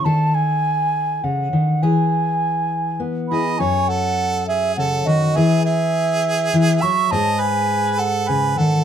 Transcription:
<<
  \new Staff \with { instrumentName = "Flute" } { \time 3/4 \key fis \dorian \tempo 4 = 102 a''8 gis''4. fis''4 | gis''2~ gis''8 b''8 | gis''8 fis''4 e''8 fis''8 dis''8 | e''8 e''2 cis'''8 |
a''8 gis''4 fis''8 gis''8 fis''8 | }
  \new Staff \with { instrumentName = "Harmonica" } { \time 3/4 \key fis \dorian r2. | r2 r8 dis''8 | cis''8 a'4 gis'8 a'8 fis'8 | gis'8 gis'2 e''8 |
dis''8 b'4 a'8 b'8 a'8 | }
  \new Staff \with { instrumentName = "Steel-string acoustic guitar" } { \clef bass \time 3/4 \key fis \dorian << { a'2. | gis'2~ gis'8 <e' gis'>8 | a'2. | gis'2. |
gis'2. | } \\ { dis2 cis8 dis8 | e2 b4 | fis,2 cis8 dis8 | e2 e8 fis8 |
gis,2 cis8 dis8 | } >> }
>>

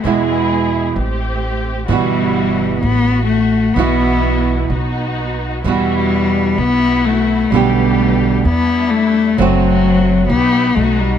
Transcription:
<<
  \new Staff \with { instrumentName = "String section" } { \time 4/4 \key e \minor \tempo 4 = 129 <b e' gis'>2 <a c' g'>2 | <g e' fis'>2 <a fis'>2 | <b e' fis'>2 <b dis' fis'>2 | <g e' fis'>2 <b e' fis'>2 |
<a b g'>2 <g d' e'>2 | <a c' fis'>2 <b e' g'>4 <b dis' fis'>4 | }
  \new Staff \with { instrumentName = "Cello" } { \time 4/4 \key e \minor gis2 r2 | g2 b4 a4 | b2 r2 | g2 b4 a4 |
g2 b4 a4 | fis2 b4 a8 g8 | }
  \new Staff \with { instrumentName = "Nylon-string guitar" } { \time 4/4 \key e \minor <b, e gis b e'>2 r2 | <b, e g b fis'>2 r2 | <b, e b e' fis'>2 r2 | <b, e g b fis'>2 r2 |
<b, d a b g'>2 r2 | <fis a c' fis'>2 r2 | }
  \new Staff \with { instrumentName = "Upright bass" } { \clef bass \time 4/4 \key e \minor e,2 a,,2 | g,,2 a,,2 | b,,2 b,,2 | e,2 b,,2 |
b,,2 e,2 | fis,,2 b,,4 b,,4 | }
>>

